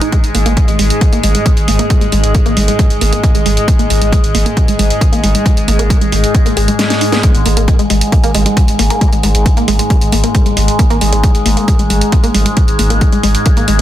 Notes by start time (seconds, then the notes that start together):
Already playing: G#2 G#3 G#4 D#5 D#6
0.01 D#4, closed hi-hat
0.12 G#3, kick, closed hi-hat
0.24 G#1, closed hi-hat
0.35 G#1 A#3, open hi-hat
0.46 G#1 A#3, closed hi-hat
0.57 G#3, kick, closed hi-hat
0.68 G#1 G#3, closed hi-hat
0.79 G#1 G#3, open hi-hat
0.90 closed hi-hat
1.01 A#3, kick, closed hi-hat
1.12 G#1 A#3, closed hi-hat
1.23 G#1 G#3, open hi-hat
1.35 G#3, closed hi-hat
1.46 G#3, kick, closed hi-hat
1.57 G#1, closed hi-hat
1.68 G#1 A#3, open hi-hat
1.79 A#3, closed hi-hat
1.90 G#3, kick, closed hi-hat
2.01 G#1 G#3, closed hi-hat
2.12 G#1 G#3, open hi-hat
2.24 G#1, closed hi-hat
2.35 A#3, kick, closed hi-hat
2.46 G#1 A#3, closed hi-hat
2.57 G#1 G#3, open hi-hat
2.68 G#3, closed hi-hat
2.79 G#3, kick, closed hi-hat
2.90 G#1, closed hi-hat
3.01 G#1 A#3, open hi-hat
3.13 A#3, closed hi-hat
3.23 G#3, kick, closed hi-hat
3.35 G#1 G#3, closed hi-hat
3.46 G#1 G#3, open hi-hat
3.57 closed hi-hat
3.68 A#3, kick, closed hi-hat
3.79 G#1 A#3, closed hi-hat
3.90 G#1 G#3, open hi-hat
4.01 G#1 G#3, closed hi-hat
4.12 G#3, kick, closed hi-hat
4.24 G#1, closed hi-hat
4.34 G#1 A#3, open hi-hat
4.46 A#3, closed hi-hat
4.57 G#3, kick, closed hi-hat
4.68 G#1 G#3, closed hi-hat
4.79 G#1 G#3, open hi-hat
4.90 closed hi-hat
5.01 A#3, kick, closed hi-hat
5.12 G#1 A#3, closed hi-hat
5.23 G#1 G#3, open hi-hat
5.35 G#3, closed hi-hat
5.46 G#3, kick, closed hi-hat
5.57 G#1, closed hi-hat
5.68 G#1 A#3, open hi-hat
5.79 G#1 A#3, closed hi-hat
5.90 G#3, kick, closed hi-hat
6.01 G#1 G#3, closed hi-hat
6.12 G#1 G#3, open hi-hat
6.24 closed hi-hat
6.35 A#3, kick, closed hi-hat
6.46 G#1 A#3, closed hi-hat
6.57 G#1 G#4, open hi-hat
6.68 G#3, closed hi-hat
6.79 G#3, snare, closed hi-hat
6.90 snare, closed hi-hat
7.01 D#4, open hi-hat
7.12 B3, snare, closed hi-hat
7.23 G#2 G#3, kick, closed hi-hat
7.35 G#1, closed hi-hat
7.46 G#1 A#3, open hi-hat
7.57 G#1 A#3, closed hi-hat
7.68 G#3, kick, closed hi-hat
7.79 G#1 G#3, closed hi-hat
7.90 G#1 G#3, open hi-hat
8.01 closed hi-hat
8.12 A#3, kick, closed hi-hat
8.23 G#1 A#3, closed hi-hat
8.35 G#1 G#3, open hi-hat
8.46 G#3, closed hi-hat
8.57 G#3, kick, closed hi-hat
8.68 G#1, closed hi-hat
8.79 G#1 A#3, open hi-hat
8.90 A#3, closed hi-hat
9.01 G#3, kick, closed hi-hat
9.12 G#1 G#3, closed hi-hat
9.23 G#1 G#3, open hi-hat
9.35 G#1, closed hi-hat
9.46 A#3, kick, closed hi-hat
9.57 G#1 A#3, closed hi-hat
9.68 G#1 G#3, open hi-hat
9.79 G#3, closed hi-hat
9.90 G#3, kick, closed hi-hat
10.01 G#1, closed hi-hat
10.12 G#1 A#3, open hi-hat
10.24 A#3, closed hi-hat
10.35 G#3, kick, closed hi-hat
10.46 G#1 G#3, closed hi-hat
10.57 G#1 G#3, open hi-hat
10.68 closed hi-hat
10.79 A#3, kick, closed hi-hat
10.90 G#1 A#3, closed hi-hat
11.01 G#1 G#3, open hi-hat
11.12 G#1 G#3, closed hi-hat
11.23 G#3, kick, closed hi-hat
11.35 G#1, closed hi-hat
11.46 G#1 A#3, open hi-hat
11.57 A#3, closed hi-hat
11.68 G#3, kick, closed hi-hat
11.79 G#1 G#3, closed hi-hat
11.90 G#1 G#3, open hi-hat
12.01 closed hi-hat
12.12 A#3, kick, closed hi-hat
12.24 G#1 A#3, closed hi-hat
12.35 G#1 G#3, open hi-hat
12.46 G#3, closed hi-hat
12.57 G#3, kick, closed hi-hat
12.68 G#1, closed hi-hat
12.79 G#1 A#3, open hi-hat
12.90 G#1 A#3, closed hi-hat
13.01 G#3, kick, closed hi-hat
13.12 G#1 G#3, closed hi-hat
13.23 G#1 G#3, open hi-hat
13.35 closed hi-hat
13.46 A#3, kick, closed hi-hat
13.57 G#1 A#3, closed hi-hat
13.68 G#1 G#3, open hi-hat